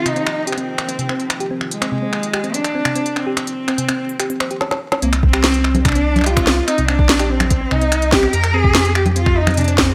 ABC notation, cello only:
X:1
M:4/4
L:1/8
Q:1/4=145
K:Cm
V:1 name="Cello"
E2 C4- C z | A,4 D3 C- | C6 z2 | B, C3 D2 F2 |
E D2 C2 E2 G | B A2 G F E D C |]